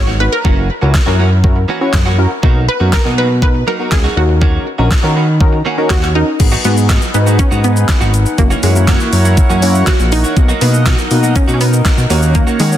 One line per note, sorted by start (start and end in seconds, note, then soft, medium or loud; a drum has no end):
0.00 0.29 G#1 medium
0.00 0.18 C#5 loud
0.07 0.19 F#3 medium
0.07 0.19 B3 medium
0.07 0.19 D#4 medium
0.07 0.20 F#4 medium
0.20 0.31 B3 medium
0.20 0.31 D#4 medium
0.20 0.31 F#4 medium
0.20 0.26 B4 loud
0.20 0.31 B4 medium
0.32 2.14 A#4 medium
0.32 muted clean electric guitar stroke soft
0.44 0.70 F#1 loud
0.44 0.67 E3 medium
0.44 0.68 A#3 medium
0.44 0.62 C#4 medium
0.44 0.68 C#4 medium
0.44 0.62 E4 medium
0.44 0.62 F#4 medium
0.44 0.68 F#4 medium
0.44 0.62 A#4 medium
0.44 kick loud
0.69 muted clean electric guitar stroke soft
0.81 0.99 C#2 medium
0.81 0.93 E3 soft
0.81 0.93 A#3 medium
0.81 0.93 C#4 medium
0.81 0.94 C#4 medium
0.81 0.93 E4 medium
0.81 0.94 F#4 medium
0.81 0.93 F#4 medium
0.81 0.93 A#4 medium
0.94 muted clean electric guitar stroke soft
0.94 kick loud
0.94 snare loud
0.94 clap loud
1.06 1.66 F#2 medium
1.06 1.17 E3 medium
1.06 1.18 A#3 medium
1.06 1.24 C#4 medium
1.06 1.18 C#4 medium
1.06 1.24 E4 medium
1.06 1.19 F#4 medium
1.06 1.24 F#4 medium
1.06 1.24 A#4 loud
1.19 1.39 E3 medium
1.19 1.31 A#3 medium
1.19 1.31 C#4 loud
1.19 1.30 F#4 medium
1.31 muted clean electric guitar stroke soft
1.44 1.61 C#4 medium
1.44 1.61 E4 medium
1.44 1.61 F#4 medium
1.44 1.61 A#4 medium
1.44 muted clean electric guitar stroke soft
1.44 kick loud
1.56 muted clean electric guitar stroke soft
1.68 1.81 E3 medium
1.68 1.81 A#3 medium
1.68 1.80 C#4 medium
1.68 1.80 F#4 medium
1.81 1.92 E3 medium
1.81 1.93 A#3 medium
1.81 1.98 C#4 medium
1.81 1.93 C#4 medium
1.81 1.98 E4 medium
1.81 1.93 F#4 medium
1.81 1.98 F#4 medium
1.81 1.98 C#5 loud
1.93 2.27 F#2 medium
1.93 kick loud
1.93 snare medium
1.93 clap loud
2.06 2.17 E3 medium
2.06 2.17 A#3 medium
2.06 2.18 C#4 medium
2.06 2.18 F#4 medium
2.18 2.30 C#4 medium
2.18 2.30 E4 medium
2.18 2.30 F#4 medium
2.18 2.30 A#4 loud
2.18 muted clean electric guitar stroke soft
2.31 muted clean electric guitar stroke soft
2.43 2.68 B1 loud
2.43 2.66 F#3 medium
2.43 2.66 A#3 medium
2.43 2.60 B3 medium
2.43 2.60 D#4 medium
2.43 2.66 D#4 medium
2.43 2.60 F#4 medium
2.43 2.67 F#4 medium
2.43 2.60 A#4 loud
2.43 kick loud
2.68 2.94 B4 loud
2.68 muted clean electric guitar stroke soft
2.80 2.97 F#2 loud
2.80 2.91 F#3 medium
2.80 2.92 A#3 medium
2.80 2.92 B3 medium
2.80 2.92 D#4 medium
2.80 2.93 F#4 medium
2.80 2.92 F#4 medium
2.80 2.92 A#4 medium
2.93 3.19 A#4 loud
2.93 muted clean electric guitar stroke soft
2.93 kick loud
2.93 snare loud
2.93 clap loud
3.05 3.64 B2 medium
3.05 3.16 F#3 medium
3.05 3.17 A#3 medium
3.05 3.22 B3 medium
3.05 3.22 D#4 medium
3.05 3.17 D#4 medium
3.05 3.18 F#4 medium
3.05 3.22 F#4 medium
3.05 3.22 A#4 medium
3.17 3.37 F#3 medium
3.17 3.30 A#3 medium
3.17 3.29 D#4 medium
3.17 3.28 F#4 medium
3.17 3.42 B4 loud
3.30 muted clean electric guitar stroke soft
3.42 3.59 B3 medium
3.42 3.59 D#4 medium
3.42 3.59 F#4 medium
3.42 3.59 A#4 medium
3.42 3.68 B4 loud
3.42 muted clean electric guitar stroke soft
3.42 kick loud
3.55 muted clean electric guitar stroke soft
3.67 3.80 F#3 medium
3.67 3.79 A#3 medium
3.67 3.79 D#4 loud
3.67 3.78 F#4 medium
3.67 3.93 A#4 loud
3.79 3.90 F#3 medium
3.79 3.91 A#3 medium
3.79 3.96 B3 medium
3.79 3.97 D#4 medium
3.79 3.91 D#4 medium
3.79 3.92 F#4 medium
3.79 3.97 F#4 medium
3.79 3.97 A#4 medium
3.92 4.09 C#2 medium
3.92 4.15 G#4 loud
3.92 muted clean electric guitar stroke soft
3.92 kick loud
3.92 snare medium
3.92 clap loud
4.04 4.16 F#3 medium
4.04 4.16 A#3 medium
4.04 4.17 D#4 medium
4.04 4.16 F#4 medium
4.16 4.59 D#2 loud
4.16 4.66 C#4 medium
4.16 4.66 D#4 medium
4.16 4.66 F#4 medium
4.16 5.87 F#4 medium
4.16 4.66 A#4 medium
4.16 muted clean electric guitar stroke soft
4.29 muted clean electric guitar stroke soft
4.41 4.64 D#3 medium
4.41 4.64 A#3 loud
4.41 4.65 C#4 loud
4.41 4.65 F#4 medium
4.41 kick loud
4.66 muted clean electric guitar stroke soft
4.78 4.96 A#1 loud
4.78 4.90 D#3 medium
4.78 4.90 A#3 medium
4.78 4.90 C#4 medium
4.78 4.90 D#4 medium
4.78 4.91 F#4 medium
4.78 4.90 F#4 medium
4.78 4.90 A#4 medium
4.91 kick loud
4.91 snare loud
4.91 clap loud
5.03 5.62 D#3 medium
5.03 5.14 D#3 medium
5.03 5.15 A#3 medium
5.03 5.20 C#4 medium
5.03 5.15 C#4 medium
5.03 5.20 D#4 medium
5.03 5.16 F#4 medium
5.03 5.20 F#4 medium
5.03 5.21 A#4 loud
5.15 5.36 D#3 medium
5.15 5.28 A#3 medium
5.15 5.27 C#4 medium
5.15 5.27 F#4 medium
5.15 5.39 B5 medium
5.28 muted clean electric guitar stroke medium
5.41 5.58 C#4 medium
5.41 5.58 D#4 medium
5.41 5.58 F#4 medium
5.41 5.58 A#4 loud
5.41 5.64 A#5 medium
5.41 muted clean electric guitar stroke medium
5.41 kick loud
5.53 muted clean electric guitar stroke soft
5.65 5.78 D#3 medium
5.65 5.77 A#3 medium
5.65 5.77 C#4 loud
5.65 5.76 F#4 loud
5.65 5.89 G#5 medium
5.77 5.89 D#3 soft
5.77 5.89 A#3 medium
5.77 5.95 C#4 medium
5.77 5.89 C#4 medium
5.77 5.95 D#4 medium
5.77 5.90 F#4 medium
5.77 5.95 F#4 medium
5.77 5.95 A#4 loud
5.90 6.24 D#2 medium
5.90 6.16 F#4 loud
5.90 muted clean electric guitar stroke soft
5.90 kick loud
5.90 snare medium
5.90 clap loud
6.02 6.14 D#3 medium
6.02 6.14 A#3 medium
6.02 6.14 C#4 medium
6.02 6.15 F#4 medium
6.02 clap medium
6.15 6.26 C#4 medium
6.15 6.26 D#4 medium
6.15 6.66 D#4 loud
6.15 6.26 F#4 medium
6.15 6.27 A#4 loud
6.15 6.38 D#5 medium
6.15 muted clean electric guitar stroke soft
6.27 muted clean electric guitar stroke soft
6.40 6.57 G#1 loud
6.40 6.51 B3 medium
6.40 6.51 D#4 medium
6.40 8.36 D#4 medium
6.40 6.51 F#4 medium
6.40 6.51 G#4 medium
6.40 8.36 G#4 medium
6.40 8.36 B4 medium
6.40 12.06 F#5 loud
6.40 muted clean electric guitar stroke soft
6.40 kick loud
6.40 closed hi-hat medium
6.40 crash medium
6.40 shaker medium
6.52 6.63 F#3 medium
6.52 6.64 B3 medium
6.52 6.64 D#4 medium
6.52 6.65 F#4 medium
6.52 shaker medium
6.64 6.98 G#2 medium
6.64 6.82 F#3 medium
6.64 6.87 B3 medium
6.64 6.77 B3 medium
6.64 7.11 B3 loud
6.64 6.87 D#4 medium
6.64 6.76 D#4 medium
6.64 6.87 F#4 medium
6.64 6.76 F#4 medium
6.64 6.87 G#4 medium
6.64 closed hi-hat medium
6.64 shaker medium
6.77 muted clean electric guitar stroke medium
6.77 shaker medium
6.89 7.09 F#3 medium
6.89 7.01 B3 medium
6.89 7.01 D#4 medium
6.89 7.00 F#4 medium
6.89 kick loud
6.89 snare loud
6.89 clap loud
6.89 closed hi-hat medium
6.89 shaker medium
7.02 muted clean electric guitar stroke soft
7.02 shaker medium
7.14 7.39 G#2 medium
7.14 7.59 B3 medium
7.14 7.40 B3 medium
7.14 7.59 D#4 medium
7.14 7.59 F#4 medium
7.14 7.59 G#4 medium
7.14 muted clean electric guitar stroke soft
7.14 closed hi-hat medium
7.14 shaker medium
7.26 7.38 F#3 medium
7.26 7.38 B3 medium
7.26 7.38 D#4 medium
7.26 7.39 F#4 medium
7.26 shaker medium
7.39 7.62 C#4 loud
7.39 muted clean electric guitar stroke soft
7.39 kick loud
7.39 closed hi-hat medium
7.39 shaker medium
7.51 7.85 G#2 medium
7.51 7.62 F#3 medium
7.51 7.63 B3 medium
7.51 7.63 D#4 medium
7.51 7.63 F#4 medium
7.51 shaker medium
7.64 8.34 B3 loud
7.64 muted clean electric guitar stroke soft
7.64 closed hi-hat soft
7.64 shaker soft
7.76 muted clean electric guitar stroke soft
7.76 shaker medium
7.88 muted clean electric guitar stroke soft
7.88 kick loud
7.88 snare medium
7.88 clap loud
7.88 closed hi-hat medium
7.88 shaker medium
8.01 8.26 G#1 medium
8.01 8.12 F#3 medium
8.01 8.12 B3 medium
8.01 8.13 D#4 medium
8.01 8.13 F#4 medium
8.01 shaker medium
8.13 muted clean electric guitar stroke soft
8.13 closed hi-hat medium
8.13 shaker medium
8.26 muted clean electric guitar stroke soft
8.26 shaker medium
8.38 8.55 F#1 loud
8.38 8.55 A#3 medium
8.38 8.64 A#3 medium
8.38 8.55 C#4 medium
8.38 8.55 E4 medium
8.38 10.35 E4 medium
8.38 8.55 F#4 medium
8.38 12.78 A#4 medium
8.38 10.35 C#5 medium
8.38 muted clean electric guitar stroke soft
8.38 kick loud
8.38 closed hi-hat medium
8.38 shaker medium
8.50 8.61 E3 medium
8.50 8.62 A#3 medium
8.50 8.63 C#4 medium
8.50 8.63 F#4 medium
8.50 shaker medium
8.63 8.97 F#2 medium
8.63 8.80 E3 medium
8.63 8.89 G#3 medium
8.63 8.75 A#3 medium
8.63 8.75 C#4 medium
8.63 8.74 F#4 medium
8.63 open hi-hat medium
8.63 shaker medium
8.75 9.15 A#3 medium
8.75 9.15 C#4 medium
8.75 9.15 E4 medium
8.75 9.15 F#4 medium
8.75 muted clean electric guitar stroke soft
8.75 shaker medium
8.87 9.08 E3 medium
8.87 9.00 A#3 medium
8.87 9.58 A#3 medium
8.87 8.99 C#4 medium
8.87 8.99 F#4 medium
8.87 kick loud
8.87 snare loud
8.87 clap loud
8.87 closed hi-hat medium
8.87 shaker medium
9.00 muted clean electric guitar stroke soft
9.00 shaker medium
9.12 9.38 F#2 medium
9.12 muted clean electric guitar stroke soft
9.12 open hi-hat medium
9.12 shaker medium
9.25 9.36 E3 soft
9.25 9.36 A#3 medium
9.25 9.37 C#4 medium
9.25 9.37 F#4 medium
9.25 shaker medium
9.37 muted clean electric guitar stroke medium
9.37 kick loud
9.37 closed hi-hat medium
9.37 shaker medium
9.50 9.83 F#2 medium
9.50 9.61 E3 medium
9.50 9.61 A#3 medium
9.50 9.62 C#4 medium
9.50 9.62 F#4 medium
9.50 shaker soft
9.62 9.96 A#3 medium
9.62 9.96 C#4 medium
9.62 9.96 E4 medium
9.62 9.96 F#4 loud
9.62 muted clean electric guitar stroke soft
9.62 open hi-hat medium
9.62 shaker soft
9.74 muted clean electric guitar stroke soft
9.74 shaker medium
9.87 10.07 E3 medium
9.87 9.99 A#3 medium
9.87 9.99 C#4 medium
9.87 10.13 F#4 loud
9.87 9.98 F#4 medium
9.87 kick loud
9.87 snare medium
9.87 clap loud
9.87 closed hi-hat medium
9.87 shaker medium
9.99 10.25 A#1 medium
9.99 muted clean electric guitar stroke soft
9.99 shaker medium
10.12 10.63 D#4 loud
10.12 muted clean electric guitar stroke soft
10.12 open hi-hat medium
10.12 shaker medium
10.24 10.36 E3 medium
10.24 10.36 A#3 medium
10.24 10.37 C#4 medium
10.24 10.36 F#4 medium
10.24 shaker medium
10.36 10.53 B1 loud
10.36 10.48 A#3 medium
10.36 10.48 B3 medium
10.36 12.78 D#4 medium
10.36 10.48 D#4 medium
10.36 10.48 F#4 medium
10.36 12.08 D#5 medium
10.36 muted clean electric guitar stroke soft
10.36 kick loud
10.36 closed hi-hat medium
10.36 shaker medium
10.48 10.60 F#3 medium
10.48 10.60 A#3 medium
10.48 10.61 D#4 medium
10.48 10.61 F#4 medium
10.48 shaker medium
10.61 10.95 B2 medium
10.61 10.78 F#3 medium
10.61 10.84 A#3 medium
10.61 10.73 A#3 medium
10.61 10.84 B3 medium
10.61 11.38 B3 loud
10.61 10.84 D#4 medium
10.61 10.73 D#4 medium
10.61 10.84 F#4 medium
10.61 10.72 F#4 medium
10.61 open hi-hat medium
10.61 shaker medium
10.73 muted clean electric guitar stroke medium
10.73 shaker medium
10.86 11.06 F#3 medium
10.86 10.98 A#3 medium
10.86 10.98 D#4 medium
10.86 10.97 F#4 medium
10.86 kick loud
10.86 snare loud
10.86 clap loud
10.86 closed hi-hat medium
10.86 shaker medium
10.98 muted clean electric guitar stroke medium
10.98 shaker soft
11.11 11.36 B2 medium
11.11 11.56 A#3 medium
11.11 11.56 B3 medium
11.11 11.56 D#4 medium
11.11 11.56 F#4 medium
11.11 muted clean electric guitar stroke soft
11.11 open hi-hat medium
11.11 shaker medium
11.23 11.34 F#3 medium
11.23 11.35 A#3 medium
11.23 11.35 D#4 medium
11.23 11.35 F#4 medium
11.23 shaker medium
11.35 11.53 C#4 medium
11.35 muted clean electric guitar stroke soft
11.35 kick loud
11.35 closed hi-hat medium
11.35 shaker medium
11.48 11.82 B2 medium
11.48 11.59 F#3 medium
11.48 11.59 A#3 medium
11.48 11.60 D#4 medium
11.48 11.60 F#4 medium
11.48 shaker medium
11.54 11.61 C#4 medium
11.60 12.37 B3 loud
11.60 muted clean electric guitar stroke soft
11.60 open hi-hat medium
11.60 shaker medium
11.73 muted clean electric guitar stroke soft
11.73 shaker medium
11.85 muted clean electric guitar stroke soft
11.85 kick loud
11.85 snare medium
11.85 clap loud
11.85 closed hi-hat medium
11.85 shaker medium
11.98 12.06 B2 medium
11.98 muted clean electric guitar stroke soft
11.98 shaker medium
12.10 12.44 D#2 loud
12.10 12.23 D#3 medium
12.10 12.60 A#3 medium
12.10 12.22 A#3 medium
12.10 12.60 C#4 medium
12.10 12.21 C#4 medium
12.10 12.60 D#4 medium
12.10 12.60 F#4 medium
12.10 12.21 F#4 loud
12.10 12.78 C#5 medium
12.10 12.78 F#5 medium
12.10 open hi-hat medium
12.10 shaker medium
12.22 12.34 D#3 medium
12.22 12.34 A#3 medium
12.22 12.34 C#4 medium
12.22 12.35 F#4 medium
12.22 shaker medium
12.35 12.61 A#3 medium
12.35 muted clean electric guitar stroke soft
12.35 kick loud
12.35 closed hi-hat medium
12.35 shaker medium
12.47 12.58 D#3 medium
12.47 12.59 A#3 medium
12.47 12.59 C#4 medium
12.47 12.60 F#4 medium
12.47 shaker medium
12.59 12.77 D#3 medium
12.59 12.78 D#3 medium
12.59 12.78 G#3 medium
12.59 12.72 A#3 medium
12.59 12.71 C#4 medium
12.59 12.71 F#4 medium
12.59 open hi-hat medium
12.59 shaker medium
12.72 12.78 A#3 medium
12.72 12.78 C#4 medium
12.72 12.78 D#4 medium
12.72 12.78 F#4 medium
12.72 muted clean electric guitar stroke medium
12.72 shaker medium